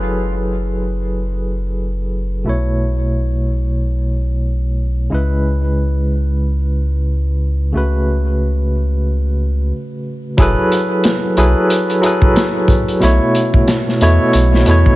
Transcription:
Already playing: sub bass F#1, tine electric piano F#3 E4 G#4 A4 B4
2.44 sub bass B1, tine electric piano B2 A3 E4
2.49 tine electric piano C#5
5.10 sub bass C#2, tine electric piano C#3 G#3 E4
5.14 tine electric piano B4
7.72 sub bass C#2, tine electric piano C#3 A3 F#4
7.77 tine electric piano B4
10.37 sub bass F#1, tine electric piano F#3 E4 G#4 A4, kick, closed hi-hat
10.42 tine electric piano B4
10.72 closed hi-hat
11.04 snare, closed hi-hat
11.37 sub bass B1, tine electric piano F#3 E4 G#4 A4 B4, closed hi-hat
11.70 closed hi-hat
11.90 closed hi-hat
12.02 tine electric piano F#3 E4 G#4 A4, closed hi-hat
12.06 tine electric piano B4
12.22 kick
12.36 snare, closed hi-hat
12.68 kick, closed hi-hat
12.88 closed hi-hat
13.00 sub bass B1, tine electric piano B2 A3 E4, closed hi-hat
13.04 tine electric piano C#5
13.35 closed hi-hat
13.54 kick
13.68 snare, closed hi-hat
13.89 snare
14.01 sub bass E2, tine electric piano B2 A3 E4 C#5, closed hi-hat
14.33 sub bass B1, closed hi-hat
14.54 snare
14.66 sub bass E2, tine electric piano B2 A3 E4, closed hi-hat
14.71 tine electric piano C#5
14.86 kick

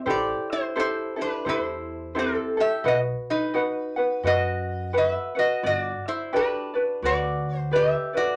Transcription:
0.06 upright bass A1, ukulele E4 G4 A4 C5
0.10 resonator guitar played with a steel bar G4 D5
0.52 resonator guitar played with a steel bar E4 C5
0.76 ukulele E4 G4 A4 C5, resonator guitar played with a steel bar E4
0.80 resonator guitar played with a steel bar C5
1.16 ukulele E4 G4 A4
1.21 resonator guitar played with a steel bar D4 B4
1.45 upright bass E2, ukulele E4 G4 A4 C5, resonator guitar played with a steel bar E4
1.49 resonator guitar played with a steel bar C5
2.15 resonator guitar played with a steel bar C4, ukulele E4 G4 A4 C5
2.19 resonator guitar played with a steel bar A4
2.57 ukulele E4 G4 A4, resonator guitar played with a steel bar G4 E5
2.84 upright bass B1, ukulele F#4 B4 D#5 F#5, resonator guitar played with a steel bar F#4
2.88 resonator guitar played with a steel bar D#5
3.30 resonator guitar played with a steel bar D#4 B4
3.54 ukulele F#4 B4 D#5 F#5
3.96 ukulele F#4 B4 F#5
4.23 upright bass F#2, ukulele F#4 B4 D#5 F#5, resonator guitar played with a steel bar F#4
4.27 resonator guitar played with a steel bar D#5
4.93 ukulele F#4 B4 F#5
4.98 resonator guitar played with a steel bar B4 D#5
5.09 resonator guitar played with a steel bar E5
5.35 ukulele F#4 B4 F#5, resonator guitar played with a steel bar F#4
5.39 resonator guitar played with a steel bar D#5
5.63 upright bass G1, ukulele F#4 D5, resonator guitar played with a steel bar F#4 D#5
5.78 resonator guitar played with a steel bar D5
6.08 resonator guitar played with a steel bar E4 C5
6.33 resonator guitar played with a steel bar D4 B4, ukulele F#4 G4 B4 D5
6.74 ukulele F#4 B4 D5
7.02 upright bass D2, ukulele F#4 B4 D5, resonator guitar played with a steel bar F#4 D5
7.58 resonator guitar played with a steel bar C5
7.71 ukulele G4 B4 D5
7.76 resonator guitar played with a steel bar G4 E5
8.13 ukulele F#4 B4 D5, resonator guitar played with a steel bar F#4
8.17 resonator guitar played with a steel bar D5

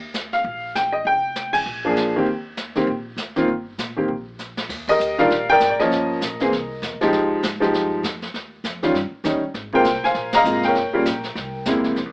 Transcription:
Already playing: upright bass D#2
0.14 snare, hi-hat pedal
0.33 upright piano F5, snare
0.44 upright bass A#1, brush sweep, kick
0.75 upright piano G5, snare, hi-hat pedal
0.92 upright piano D#5
1.05 upright bass F1, upright piano G5, brush sweep, kick
1.35 snare, hi-hat pedal
1.53 upright piano G#5, kick, ride
1.66 upright bass A#1, brush sweep
1.85 upright piano F3 A#3 D4 G#4
1.96 snare, hi-hat pedal
2.16 upright piano D#3 A#3 C4 G4
2.26 upright bass D#2, brush sweep, kick
2.57 snare, hi-hat pedal
2.75 upright piano D#3 A#3 C4 G4, snare
2.87 upright bass A#1, brush sweep, kick
3.17 upright bass D2, snare, hi-hat pedal
3.36 upright piano D#3 A#3 C4 F4, snare
3.48 upright bass G1, brush sweep, kick
3.78 upright bass A#2, snare, hi-hat pedal
3.96 upright piano D#3 A#3 C4 G4
4.08 upright bass A#1, brush sweep, kick
4.39 snare, hi-hat pedal
4.57 snare
4.69 upright bass D#2, brush sweep, kick, snare, crash
4.88 upright piano G4 A#4 D#5, kick, crash
5.00 upright bass D2, hi-hat pedal
5.18 upright piano D#3 G3 D4 F4 A#4 D5 F5, snare
5.30 upright bass A#1, brush sweep, kick, snare
5.50 upright piano A#4 D5 G5
5.60 upright bass G#1, kick, snare, hi-hat pedal
5.70 upright piano D5
5.78 upright piano F3 A#3 C#4 A#4 D#5, muted upright bass stroke, snare
5.91 upright bass G1, brush sweep, kick, snare
6.21 upright bass A#1, kick, snare, hi-hat pedal
6.40 upright piano E3 A#3 C4 G#4, snare
6.52 upright bass C2, brush sweep, kick, snare
6.82 upright bass E2, kick, snare, hi-hat pedal
6.92 upright bass C2
7.01 upright bass A#1, upright piano F3 G#3 D#4 G4, snare
7.13 upright bass F2, brush sweep, kick, snare
7.43 upright bass G#2, kick, snare, hi-hat pedal
7.60 upright piano F3 G#3 D#4 G4, snare
7.73 upright bass G2, brush sweep, kick, snare
8.03 upright bass F2, kick, snare, hi-hat pedal
8.22 snare
8.34 upright bass D#2, brush sweep, kick, snare
8.64 upright bass F2, kick, snare, hi-hat pedal
8.82 upright piano D#3 G3 C#4 F4, snare
8.94 upright bass G2, brush sweep, snare
9.11 muted upright bass stroke
9.24 upright bass D#2, upright piano D#3 G3 C#4 D#4, snare, hi-hat pedal
9.42 muted upright bass stroke
9.54 upright bass G#1, brush sweep, kick, snare
9.73 upright piano C3 G#3 A#3 F4 A#4 C5 G5, kick
9.84 upright bass C2, kick, snare, hi-hat pedal
9.94 snare
10.03 upright piano C5 F5 G#5, muted upright bass stroke, snare
10.14 upright bass A#1, brush sweep, kick, snare
10.32 upright piano D#5 F5 A#5, snare, ride
10.44 upright bass G#1, upright piano C3 G#3 A#3 F4, hi-hat pedal
10.63 upright piano G5, snare
10.67 upright piano A#4 C#5
10.75 upright bass G1, brush sweep, kick, snare
10.93 upright piano C#3 G3 A#3 F4, muted upright bass stroke
11.05 upright bass A#1, kick, snare, hi-hat pedal
11.23 snare
11.35 upright bass C2, brush sweep, kick, snare
11.65 upright bass E2, upright piano C3 G#3 A#3 E4, snare, hi-hat pedal
11.84 snare
11.96 upright bass F2, brush sweep, kick, snare
12.05 upright bass D#2

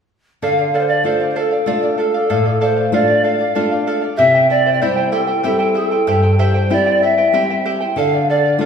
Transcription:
0.42 nylon-string guitar D3, charango A4 D5 F5, pan flute F5
0.59 charango D5 F5
0.74 charango A4 D5 F5, pan flute D5
0.78 pan flute C5
0.88 pan flute D5, charango D5 F5
1.04 nylon-string guitar A3 D4 F4, charango A4 D5 F5, pan flute C5
1.20 charango D5 F5
1.30 pan flute C5
1.36 charango A4 D5 F5, pan flute A4
1.51 charango D5 F5
1.66 nylon-string guitar A3 D4 F4, charango A4 D5 F5, pan flute A4
1.82 charango D5 F5
1.98 charango A4 D5 F5, pan flute A4
2.14 charango D5 F5
2.29 nylon-string guitar A2, charango A4 D5 F5
2.45 charango D5 F5
2.61 charango A4 D5 F5, pan flute C5
2.76 charango D5 F5
2.92 nylon-string guitar A3 D4 F4, charango A4 D5 F5, pan flute D5
3.08 charango D5 F5
3.24 charango A4 D5 F5, pan flute F5
3.39 charango D5 F5
3.55 nylon-string guitar A3 D4 F4, charango A4 D5 F5
3.71 charango D5 F5
3.87 charango A4 D5 F5
4.02 charango D5 F5
4.17 nylon-string guitar C3, charango E4 G4 C5 E5 G5, pan flute E5
4.34 charango E4 C5 G5
4.50 charango E4 C5 E5 G5, pan flute D5
4.66 charango E4 C5 G5
4.73 pan flute D5
4.82 nylon-string guitar G3 C4 E4, charango E4 G4 C5 E5 G5, pan flute C5
4.96 charango E4 C5 G5
5.12 charango E4 G4 C5 E5 G5, pan flute A4
5.27 charango E4 C5 G5
5.43 nylon-string guitar G3 C4 E4, charango E4 G4 C5 E5 G5, pan flute A4
5.59 charango E4 C5 G5
5.74 charango E4 C5 E5 G5, pan flute G#4
5.87 pan flute A4
5.91 charango E4 C5 G5
6.07 nylon-string guitar G2, charango E4 G4 C5 E5 G5
6.23 charango E4 C5 G5
6.39 charango E4 G4 C5 E5 G5, pan flute C5
6.54 charango E4 C5 G5
6.70 nylon-string guitar G3 C4 E4, charango E4 G4 C5 E5 G5, pan flute D5
6.86 charango E4 C5 G5
7.02 charango E4 C5 E5 G5, pan flute E5
7.18 charango E4 C5 G5
7.33 nylon-string guitar G3 C4 E4, charango E4 G4 C5 E5 G5
7.50 charango E4 C5 G5
7.65 charango E4 G4 C5 E5 G5
7.81 charango E4 C5 G5
7.96 nylon-string guitar D3, charango A4 D5 F5, pan flute F5
8.14 charango D5 F5
8.30 charango A4 D5 F5, pan flute D5
8.45 charango D5 F5
8.58 nylon-string guitar A3 D4 F4, charango A4 D5 F5, pan flute C5

